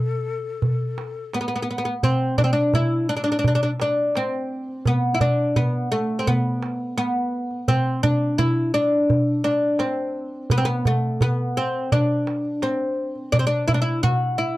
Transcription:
0.00 1.29 A3 medium
0.00 1.28 A4 medium
0.09 darbuka ka soft
0.27 darbuka ka soft
0.62 darbuka dum medium
0.80 darbuka ka soft
0.98 darbuka tek medium
1.16 darbuka ka soft
1.33 1.40 B3 medium
1.33 darbuka tek medium
1.41 1.47 B3 medium
1.48 1.54 B3 medium
1.56 1.61 B3 medium
1.62 1.69 B3 medium
1.71 1.77 B3 soft
1.78 1.84 B3 medium
1.85 1.93 B3 soft
2.03 2.38 C4 medium
2.03 darbuka dum medium
2.21 darbuka ka soft
2.38 2.44 D4 medium
2.38 darbuka dum medium
2.44 2.51 C4 medium
2.53 2.74 D4 medium
2.73 3.09 E4 medium
2.73 darbuka dum medium
2.92 darbuka ka soft
3.09 3.15 D4 medium
3.09 darbuka ka soft
3.17 3.23 D4 medium
3.24 3.31 D4 medium
3.24 darbuka ka soft
3.32 3.38 D4 medium
3.39 3.47 D4 medium
3.44 3.54 D4 medium
3.44 darbuka dum medium
3.55 3.62 D4 medium
3.62 3.70 D4 medium
3.62 darbuka ka soft
3.80 4.17 D4 medium
3.80 darbuka tek medium
3.98 darbuka ka soft
4.16 4.87 C4 medium
4.16 darbuka tek medium
4.68 darbuka ka soft
4.85 5.15 B3 medium
4.85 darbuka dum medium
5.03 darbuka ka soft
5.15 5.21 E4 medium
5.20 5.57 D4 medium
5.20 darbuka dum medium
5.56 5.91 B3 medium
5.56 darbuka dum medium
5.74 darbuka ka soft
5.92 6.21 A3 medium
6.10 darbuka ka soft
6.19 6.26 C4 medium
6.27 6.96 B3 medium
6.27 darbuka dum medium
6.62 darbuka tek medium
6.80 darbuka ka soft
6.97 7.70 B3 medium
6.97 darbuka tek medium
7.51 darbuka ka soft
7.68 8.03 C4 medium
7.68 darbuka dum medium
7.86 darbuka ka soft
8.03 8.38 D4 medium
8.03 darbuka dum medium
8.38 8.74 E4 medium
8.38 darbuka dum medium
8.74 9.43 D4 medium
8.92 darbuka ka soft
9.10 darbuka dum medium
9.27 darbuka ka soft
9.44 9.81 D4 medium
9.44 darbuka tek medium
9.62 darbuka ka soft
9.79 10.51 C4 medium
9.79 darbuka tek medium
10.50 10.58 B3 medium
10.50 darbuka dum medium
10.58 10.64 C4 medium
10.65 10.86 B3 medium
10.65 darbuka ka soft
10.85 11.22 A3 medium
10.85 darbuka dum medium
11.21 11.58 B3 medium
11.21 darbuka dum medium
11.39 darbuka ka soft
11.56 11.92 C4 medium
11.56 darbuka ka soft
11.74 darbuka ka soft
11.92 12.65 D4 medium
11.92 darbuka dum medium
12.27 darbuka tek medium
12.45 darbuka ka soft
12.62 13.35 C4 medium
12.62 darbuka tek medium
13.16 darbuka ka soft
13.32 13.39 D4 medium
13.32 darbuka dum medium
13.39 13.46 C4 medium
13.47 13.67 D4 medium
13.51 darbuka ka soft
13.68 13.74 E4 medium
13.68 darbuka dum medium
13.74 13.81 D4 medium
13.82 14.03 E4 medium
14.03 14.38 F#4 medium
14.03 darbuka dum medium
14.38 14.57 E4 medium

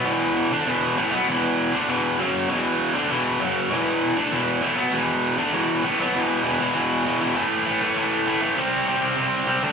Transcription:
0.05 0.50 E2 loud
0.05 0.50 B2 medium
0.05 0.51 E3 loud
0.50 0.66 D3 medium
0.50 0.66 A3 medium
0.50 0.66 D4 loud
0.66 0.96 E2 loud
0.66 0.96 B2 loud
0.66 0.96 E3 loud
0.97 1.11 A2 medium
0.97 1.12 E3 loud
0.97 1.12 A3 loud
1.11 1.26 B2 loud
1.11 1.27 F#3 loud
1.11 1.27 B3 loud
1.27 1.72 E2 medium
1.27 1.73 B2 medium
1.27 1.73 E3 loud
1.73 1.88 D3 medium
1.73 1.88 A3 loud
1.73 1.88 D4 loud
1.89 2.18 E2 medium
1.89 2.18 B2 medium
1.89 2.18 E3 loud
2.18 2.48 F#2 medium
2.18 2.48 C#3 medium
2.18 2.49 F#3 loud
2.49 2.94 E2 medium
2.49 2.93 B2 medium
2.49 2.94 E3 loud
2.94 3.09 D3 medium
2.94 3.09 A3 loud
2.94 3.09 D4 loud
3.08 3.39 E2 medium
3.08 3.39 B2 medium
3.08 3.39 E3 loud
3.39 3.69 F#2 medium
3.39 3.70 C#3 loud
3.39 3.70 F#3 loud
3.70 4.16 E2 medium
3.70 4.15 B2 medium
3.70 4.16 E3 loud
4.16 4.31 D3 medium
4.16 4.31 A3 loud
4.16 4.31 D4 loud
4.31 4.61 E2 medium
4.31 4.61 B2 medium
4.31 4.61 E3 loud
4.61 4.75 A2 medium
4.61 4.76 E3 loud
4.61 4.76 A3 loud
4.76 4.91 B2 loud
4.76 4.91 F#3 medium
4.76 4.91 B3 loud
4.93 5.37 E2 medium
4.93 5.37 B2 loud
4.93 5.37 E3 loud
5.37 5.52 D3 medium
5.37 5.52 A3 loud
5.37 5.53 D4 loud
5.52 5.82 E2 loud
5.52 5.83 B2 medium
5.52 5.83 E3 loud
5.83 5.98 A2 loud
5.83 5.98 E3 medium
5.83 5.98 A3 loud
5.99 6.13 B2 medium
5.99 6.14 F#3 loud
5.99 6.14 B3 loud
6.14 6.42 E2 medium
6.14 6.43 B2 medium
6.14 6.44 E3 medium
6.44 6.58 E2 medium
6.44 6.58 B2 medium
6.44 6.59 E3 medium
6.59 6.74 E2 medium
6.59 6.74 B2 medium
6.59 6.75 E3 loud
6.75 7.04 E2 medium
6.75 7.05 B2 medium
6.75 7.05 E3 medium
7.05 7.21 E2 medium
7.05 7.20 B2 medium
7.05 7.21 E3 medium
7.21 7.35 E2 medium
7.21 7.35 B2 medium
7.21 7.35 E3 medium
7.35 7.65 A2 medium
7.35 7.65 E3 medium
7.35 7.65 A3 loud
7.66 7.81 A2 medium
7.66 7.80 E3 loud
7.66 7.80 A3 medium
7.81 7.95 A2 medium
7.81 7.96 E3 medium
7.81 7.96 A3 loud
7.97 8.26 A2 medium
7.97 8.26 E3 loud
7.97 8.26 A3 loud
8.27 8.41 A2 medium
8.27 8.41 E3 medium
8.27 8.40 A3 medium
8.41 8.56 A2 medium
8.41 8.56 E3 medium
8.41 8.56 A3 loud
8.56 8.85 C3 medium
8.56 8.85 G3 medium
8.56 8.86 C4 loud
8.86 9.01 C3 medium
8.86 9.01 G3 medium
8.86 9.00 C4 medium
9.01 9.15 C3 medium
9.01 9.15 G3 medium
9.01 9.16 C4 loud
9.16 9.46 C3 medium
9.16 9.46 G3 loud
9.16 9.47 C4 loud
9.47 9.62 C3 medium
9.47 9.62 G3 medium
9.47 9.63 C4 medium
9.63 9.72 D3 medium
9.63 9.72 A3 loud
9.63 9.72 D4 medium

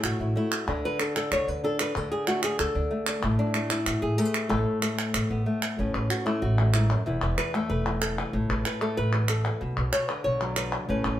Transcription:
0.00 0.10 A1 medium
0.00 0.68 A2 medium
0.00 0.35 A3 medium
0.00 0.20 E4 soft
0.00 clap medium
0.05 0.68 F#4 medium
0.20 0.32 A1 medium
0.20 0.36 E4 soft
0.36 0.67 A3 medium
0.36 0.68 E4 medium
0.52 clap medium
0.68 0.80 D2 medium
0.68 1.94 D3 medium
0.85 1.00 B4 medium
0.99 1.63 D4 medium
0.99 1.15 A4 medium
0.99 clap medium
1.16 1.32 A4 medium
1.16 clap medium
1.32 1.38 D2 medium
1.32 1.48 C#5 loud
1.32 clap medium
1.47 1.60 D2 medium
1.47 1.64 B4 medium
1.64 1.94 D4 medium
1.64 1.80 A4 medium
1.79 1.97 B4 medium
1.79 clap medium
1.95 2.08 D2 medium
1.95 3.23 D3 medium
1.95 2.11 A4 medium
2.12 2.27 G#4 medium
2.27 2.90 A3 medium
2.27 2.43 F#4 medium
2.27 clap medium
2.43 2.59 G#4 medium
2.43 clap medium
2.59 2.66 D2 medium
2.59 3.23 A4 medium
2.59 clap medium
2.75 2.88 D2 medium
2.75 3.07 D4 soft
2.91 3.38 A3 medium
3.06 3.22 D4 soft
3.06 clap medium
3.23 3.36 A1 loud
3.23 4.50 A2 medium
3.39 3.79 D4 medium
3.46 3.69 E4 medium
3.54 4.18 A3 medium
3.54 clap medium
3.70 4.18 E4 medium
3.70 clap medium
3.86 3.93 A1 medium
3.86 4.02 F#4 medium
3.86 clap medium
4.02 4.15 A1 medium
4.02 4.50 G#4 medium
4.18 4.82 A3 medium
4.18 4.25 A4 loud
4.25 4.49 B4 loud
4.34 clap medium
4.49 4.63 A1 loud
4.49 5.77 A2 medium
4.49 5.78 A4 medium
4.82 5.45 A3 medium
4.82 clap medium
4.99 clap medium
5.14 5.20 A1 medium
5.14 clap medium
5.30 5.43 A1 medium
5.30 5.62 B3 soft
5.46 5.76 A3 medium
5.62 6.10 B3 soft
5.62 clap medium
5.79 5.91 A1 medium
5.79 6.58 A2 medium
5.79 7.05 C#4 soft
5.79 5.95 B4 soft
5.94 6.07 A1 medium
5.94 6.25 B4 soft
6.10 6.26 F#4 medium
6.10 clap medium
6.26 7.10 A3 medium
6.26 6.42 E4 medium
6.42 6.92 A1 medium
6.42 6.74 F#4 medium
6.58 6.74 E2 medium
6.74 6.90 G#2 medium
6.74 6.90 E4 medium
6.74 clap medium
6.90 7.06 F#2 medium
7.06 7.19 E1 medium
7.06 7.85 E2 medium
7.06 8.32 E4 soft
7.06 7.23 B4 soft
7.22 7.35 E1 medium
7.22 7.38 B4 soft
7.38 7.54 B4 medium
7.38 clap medium
7.55 8.32 A3 medium
7.55 7.70 A4 medium
7.70 8.20 E1 medium
7.70 8.02 B4 medium
7.86 8.34 E2 medium
8.01 8.18 A4 medium
8.01 clap medium
8.19 8.36 B4 soft
8.33 8.46 A1 medium
8.33 9.13 A2 medium
8.50 8.62 A1 medium
8.50 8.66 B4 soft
8.65 8.82 B4 medium
8.65 clap medium
8.81 9.59 A3 medium
8.81 8.97 A4 medium
8.97 9.48 A1 medium
8.97 9.29 B4 medium
9.12 9.60 E2 medium
9.28 9.45 A4 medium
9.28 clap medium
9.45 9.92 B4 soft
9.45 clap soft
9.61 9.74 B1 medium
9.61 10.09 B2 medium
9.77 9.90 B1 medium
9.93 10.09 C#5 loud
9.93 clap medium
10.09 10.89 D3 medium
10.09 10.24 B4 medium
10.24 10.75 B1 medium
10.24 10.56 C#5 medium
10.41 10.87 F#3 medium
10.56 10.72 B4 medium
10.56 clap medium
10.89 11.01 A1 medium
10.89 11.20 A2 medium
10.89 11.20 C#4 medium
10.89 11.05 B4 medium
11.05 11.17 A1 medium
11.05 11.20 B4 medium

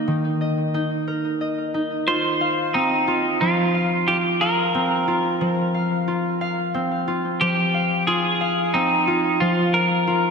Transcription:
0.00 2.62 A#3 loud
0.00 0.74 D#4 loud
0.00 0.40 D#5 loud
0.07 2.13 D#3 medium
0.41 1.40 D#5 medium
0.74 1.74 D#4 loud
1.07 3.20 A#4 medium
1.41 3.19 D#5 medium
1.74 4.45 D#4 medium
2.07 3.07 F4 loud
2.07 2.76 C5 loud
2.41 3.74 F5 loud
2.74 4.74 C4 loud
2.74 3.41 D#4 medium
3.08 4.07 F4 loud
3.41 5.40 F3 medium
3.41 4.10 F4 loud
3.74 4.41 F5 medium
4.08 5.07 F4 loud
4.08 4.17 G4 medium
4.41 7.04 A#4 medium
4.41 5.74 F5 medium
4.74 6.74 C4 loud
5.08 6.07 F4 loud
5.41 7.40 F3 medium
5.74 6.41 F5 medium
6.08 7.07 F4 loud
6.41 7.74 F5 loud
6.74 8.74 C4 loud
7.08 8.07 F4 loud
7.41 9.40 F3 medium
7.41 8.07 G4 loud
7.74 8.40 F5 medium
8.07 9.07 F4 loud
8.07 8.70 G#4 loud
8.41 9.74 F5 medium
8.74 10.31 C4 loud
8.74 9.40 D#4 medium
9.07 10.07 F4 loud
9.40 10.31 F3 medium
9.40 9.75 F4 loud
9.74 10.31 A#4 loud
9.74 10.31 F5 medium
10.07 10.31 F4 loud

